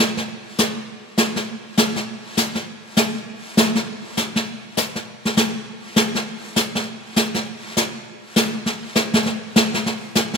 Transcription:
0.17 snare
0.29 brush sweep
0.58 snare, hi-hat pedal
0.89 brush sweep
1.17 snare, hi-hat pedal
1.36 snare
1.48 brush sweep
1.77 snare, hi-hat pedal
1.96 snare
2.07 brush sweep
2.37 snare, hi-hat pedal
2.55 snare
2.67 brush sweep
2.96 snare, hi-hat pedal
3.27 brush sweep
3.57 snare, hi-hat pedal
3.75 snare
3.88 brush sweep
4.17 snare, hi-hat pedal
4.36 snare
4.48 brush sweep
4.77 snare, hi-hat pedal
4.96 snare
5.08 brush sweep
5.25 snare
5.37 snare, hi-hat pedal
5.67 brush sweep
5.96 snare, hi-hat pedal
6.15 snare
6.27 brush sweep
6.56 snare, hi-hat pedal
6.75 snare
6.87 brush sweep
7.16 snare, hi-hat pedal
7.35 snare
7.47 brush sweep
7.76 snare, hi-hat pedal
8.06 brush sweep
8.36 snare, hi-hat pedal
8.66 brush sweep, snare
8.95 snare, hi-hat pedal
9.14 snare
9.26 brush sweep, snare
9.56 snare, hi-hat pedal
9.74 snare
9.86 brush sweep, snare
10.15 snare, hi-hat pedal
10.34 snare

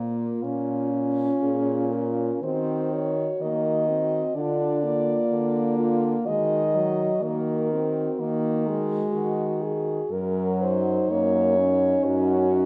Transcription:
Already playing: A#2 A#3 F4
0.43 A#2 C#4
0.93 F4
1.43 A#2 G#4
1.93 F4 A#4
2.43 D#3 C4 F#4 C5
2.93 F#4 C#5
3.41 D#3 A#3 D#5
3.88 C4 F#4
4.35 D3 D4 F4 D5
4.83 A#3 F4
5.30 D3
5.78 F4
6.26 D#3 G#3 F#4 D#5
6.75 F#3 F#4
7.23 D#3 A#3 A#4
7.72 C4 F#4
8.20 D#3 A#3
8.67 G#3 F#4
9.13 D#3 F#4
9.62 F#4 G#4
10.12 F#2 F#3 A#4
10.62 D#4 C5
11.10 F#2 A#3 C#5
11.58 C#4 D#4
12.05 F#2 F#4
12.50 D#4

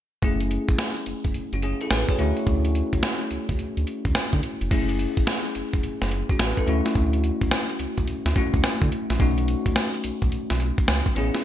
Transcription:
0.22 F#1 A3 C#4 E4 G#4, kick, closed hi-hat
0.40 closed hi-hat
0.51 closed hi-hat
0.69 A1, kick, closed hi-hat
0.78 snare, closed hi-hat
0.97 closed hi-hat
1.06 F#1, closed hi-hat
1.24 F#1, kick, closed hi-hat
1.34 F#1, closed hi-hat
1.53 F#1 C#4 F#4, closed hi-hat
1.62 C#4 G#4, closed hi-hat
1.81 E4 A4, closed hi-hat
1.91 A1 F#4 B4, snare, closed hi-hat
2.09 G#4 C#5, kick, closed hi-hat
2.18 D2 A3 C#4 E4 F#4, closed hi-hat
2.37 closed hi-hat
2.47 D2, kick, closed hi-hat
2.65 closed hi-hat
2.75 closed hi-hat
2.93 C#2, kick, closed hi-hat
3.03 snare, closed hi-hat
3.21 closed hi-hat
3.31 C#2, closed hi-hat
3.49 C#2, kick, closed hi-hat
3.59 D2, closed hi-hat
3.77 D2, closed hi-hat
3.87 closed hi-hat
4.05 D2, kick, closed hi-hat
4.15 snare, closed hi-hat
4.33 D3, kick, closed hi-hat
4.43 closed hi-hat
4.61 F1, closed hi-hat
4.71 F#1 A3 C#4 E4 G#4, kick, closed hi-hat, crash
4.89 closed hi-hat
4.99 closed hi-hat
5.17 A1, kick, closed hi-hat
5.27 snare, closed hi-hat
5.45 closed hi-hat
5.55 F#1, closed hi-hat
5.73 F#1, kick, closed hi-hat
5.83 F#1, closed hi-hat
6.02 F#1, snare, closed hi-hat
6.11 closed hi-hat
6.29 C#4 F#4, kick, closed hi-hat
6.39 A1 F#4 B4, snare, closed hi-hat
6.57 E4 A4, kick, closed hi-hat
6.67 D2 A3 C#4 E4 F#4, closed hi-hat
6.86 snare, closed hi-hat
6.95 D2, kick, closed hi-hat
7.13 closed hi-hat
7.24 closed hi-hat
7.41 C#2, kick, closed hi-hat
7.51 snare, closed hi-hat
7.70 closed hi-hat
7.79 C#2, closed hi-hat
7.98 C#2, kick, closed hi-hat
8.07 D2, closed hi-hat
8.26 D2, snare, closed hi-hat
8.36 A3 C#4 E4 F#4, kick, closed hi-hat
8.54 D2, kick, closed hi-hat
8.64 snare, closed hi-hat
8.82 D3, kick, closed hi-hat
8.92 closed hi-hat
9.10 A#1, snare, closed hi-hat
9.19 B1 A3 C#4 D#4 F#4, kick, closed hi-hat
9.38 closed hi-hat
9.48 closed hi-hat
9.66 C#2, kick, closed hi-hat
9.76 snare, closed hi-hat
9.94 closed hi-hat
10.04 B1, closed hi-hat
10.22 B1, kick, closed hi-hat
10.32 B1, closed hi-hat
10.50 B1, snare, closed hi-hat
10.60 closed hi-hat
10.78 kick, closed hi-hat
10.88 C#2, snare, closed hi-hat
11.06 kick, closed hi-hat
11.16 A1 B3 C#4 E4 G#4, closed hi-hat
11.34 snare, closed hi-hat

